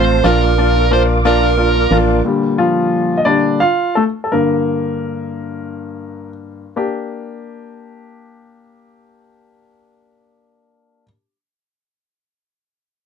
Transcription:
Already playing: fm bass A1, steel-string acoustic guitar F3 A3 C4 F4, grand piano A3 C4 F4, tonewheel organ C5 F5 A5 C6, lead electric guitar C5
0.23 fm bass A#1, steel-string acoustic guitar A#2 F3 A#3 D4 F4, grand piano A#3 D4 F4, tonewheel organ A#4 D5 D6, lead electric guitar A#4
0.41 steel-string acoustic guitar A#3 D4 F4
0.58 grand piano A#3 D4 F4
0.74 steel-string acoustic guitar A#3 D4 F4
0.91 steel-string acoustic guitar F3 A#3 D4 F4, grand piano A#3 D4 F4, lead electric guitar C5
1.24 steel-string acoustic guitar A#2 F3 A#3 D4 F4, grand piano A#3 D4 F4, lead electric guitar A#4
1.41 steel-string acoustic guitar A#3 D4 F4
1.57 grand piano A#3 D4 F4
1.75 steel-string acoustic guitar A#3 D4 F4
1.91 fm bass A1, steel-string acoustic guitar F3 A#3 D4 F4, grand piano A#3 D4 F4
2.25 grand piano A#2 D3 G3
2.58 grand piano F3 F4
3.18 grand piano D#5
3.25 grand piano A#2 D3 G3 D4 D5
3.60 grand piano F4 F5
3.95 grand piano A3 A4
4.24 grand piano A4
4.32 grand piano G2 D3 A#3 A#4
6.76 grand piano A#3 D4 G4

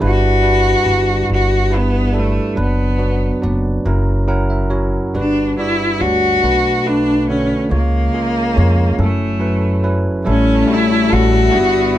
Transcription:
0.00 tine electric piano G1 G2 G3 D4 E4 B4, upright bass G1
0.05 cello F#4
0.42 tine electric piano G3 D4 E4 B4
0.84 upright bass G1, tine electric piano G3 D4 E4 F#4
1.30 upright bass G1
1.34 cello F#4
1.71 tine electric piano G3 D4 E4 B4
1.77 cello B3
2.13 tine electric piano G3 D4 E4 A4
2.19 cello A3
2.55 tine electric piano F#1 F#2 F#3 B3 D4 B4, upright bass F#1
2.62 cello B3
2.98 tine electric piano F#3 B3 D4 F#4
3.42 upright bass F#1, tine electric piano F#3 B3 D4 D5
3.85 upright bass F#1, tine electric piano F#1 F#2 F#3 C#4 E4 A#4
4.28 tine electric piano F#3 C#4 E4 A#4 F#5
4.50 tine electric piano E5
4.70 tine electric piano F#3 C#4 E4 F#4 C#5
5.14 upright bass G1, tine electric piano G1 G2 G3 D4 F#4 B4, cello D4
5.58 tine electric piano G3 D4 F#4 D5, cello E4
6.00 upright bass D2, tine electric piano G3 D4 F#4 C#5, cello F#4
6.43 upright bass B1, tine electric piano B1 B2 A3 D4 F#4 B4
6.86 tine electric piano A3 D4 F#4 B4, cello D4
7.29 tine electric piano D3 A3 F#4 A4, cello C#4
7.70 upright bass C#2, tine electric piano C#2 C#3 G#3 C#4 F4 C#5, cello A#3
8.13 tine electric piano G#3 C#4 F4 G#4
8.55 upright bass F2, tine electric piano G#3 C#4 F4 C#5
8.98 tine electric piano F#1 F#2 F#3 C#4 E4 A4, upright bass F#2
9.02 cello A3
9.39 tine electric piano F#3 C#4 E4 B4
9.83 tine electric piano F#3 C#4 E4 B4
10.25 tine electric piano A1 A2 G3 C#4 E4 A4, upright bass A1, cello A3, string section E4 C#5 E5 A5
10.29 cello C#4
10.67 tine electric piano G3 C#4 E4 F#4
10.73 cello E4
11.08 tine electric piano G3 C#4 E4 A4
11.12 upright bass A1, cello F#4
11.51 tine electric piano G1 G2 G3 D4 E4 F#4, upright bass G1, cello B3, string section D5 F#5
11.95 tine electric piano D4

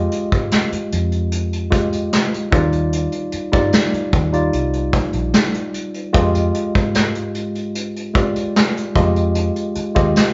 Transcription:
Already playing: tine electric piano G#3 F4 G4 D#5
0.11 closed hi-hat
0.32 fingered electric bass G#2, kick, closed hi-hat
0.51 snare, closed hi-hat
0.72 muted fingered electric bass stroke, closed hi-hat
0.92 fingered electric bass F2, closed hi-hat
1.12 closed hi-hat
1.32 closed hi-hat
1.53 closed hi-hat
1.71 tine electric piano G#3 F4 G4 D#5, kick, closed hi-hat
1.92 closed hi-hat
2.13 snare, closed hi-hat
2.34 closed hi-hat
2.51 fingered electric bass D#2, tine electric piano G3 D#4 F4 D5, kick, closed hi-hat
2.72 closed hi-hat
2.93 closed hi-hat
3.12 closed hi-hat
3.32 muted fingered electric bass stroke, closed hi-hat
3.52 fingered electric bass G2, tine electric piano G3 D#4 F4 D5, kick, closed hi-hat
3.72 snare, closed hi-hat
3.93 muted fingered electric bass stroke, closed hi-hat
4.13 fingered electric bass D#2, kick, closed hi-hat
4.33 tine electric piano G3 D#4 F4 D5, closed hi-hat
4.53 fingered electric bass C2, closed hi-hat
4.73 closed hi-hat
4.93 kick, snare, closed hi-hat
5.13 fingered electric bass A#1, closed hi-hat
5.33 snare, closed hi-hat
5.54 closed hi-hat
5.74 closed hi-hat
5.94 closed hi-hat
6.13 fingered electric bass F2, tine electric piano G#3 F4 G4 D#5, kick, closed hi-hat
6.35 closed hi-hat
6.54 closed hi-hat
6.75 fingered electric bass G#2, kick, closed hi-hat
6.94 snare, closed hi-hat
7.15 closed hi-hat
7.34 closed hi-hat
7.55 closed hi-hat
7.75 closed hi-hat
7.96 closed hi-hat
8.14 tine electric piano G#3 F4 G4 D5, kick, closed hi-hat
8.36 closed hi-hat
8.56 snare, closed hi-hat
8.77 closed hi-hat
8.95 fingered electric bass F2, tine electric piano G#3 F4 G4 D#5, kick, closed hi-hat
9.16 closed hi-hat
9.35 closed hi-hat
9.56 closed hi-hat
9.75 muted fingered electric bass stroke, closed hi-hat
9.95 fingered electric bass D#2, tine electric piano G#3 F4 G4 D#5, kick, closed hi-hat
10.16 snare, closed hi-hat

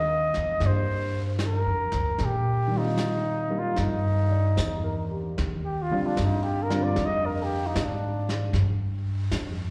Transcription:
Already playing: upright bass D#2, grand piano D3 G3 C4 F4, flugelhorn D#5
0.34 upright bass E2, snare
0.60 upright bass G2, grand piano A#3 D4 G4, brush sweep, snare
0.67 flugelhorn C5
1.39 snare, hi-hat pedal
1.46 flugelhorn A#4
1.66 upright bass F2
1.92 upright bass D2, snare
2.18 upright bass A#2, brush sweep, snare
2.24 flugelhorn G4
2.67 grand piano D#3 G3
2.75 grand piano C4 F4, flugelhorn D#4
2.97 snare, hi-hat pedal
3.49 grand piano G3 A#3 D#4
3.59 flugelhorn F4
3.76 upright bass G2, brush sweep, snare
3.80 flugelhorn D#4
4.31 grand piano D5
4.56 upright bass E2, grand piano C5, snare, hi-hat pedal
4.84 grand piano A#4
5.11 grand piano G4
5.38 upright bass D#2, brush sweep, snare
5.65 flugelhorn G4
5.82 flugelhorn F4
5.91 grand piano D3 G3 C4 F4, muted upright bass stroke
6.06 flugelhorn D4
6.17 upright bass G2, snare, hi-hat pedal
6.25 flugelhorn D#4
6.43 flugelhorn G4
6.63 flugelhorn A#4
6.70 grand piano D3 G3 C4 F4, snare
6.84 flugelhorn D5
6.96 upright bass F2, brush sweep, snare
7.05 flugelhorn D#5
7.26 flugelhorn A#4
7.43 flugelhorn G4
7.67 flugelhorn D#4
7.76 upright bass G#2, snare, hi-hat pedal
7.85 flugelhorn D4
8.29 snare
8.53 upright bass G2, brush sweep, snare
9.31 upright bass F2, snare, hi-hat pedal

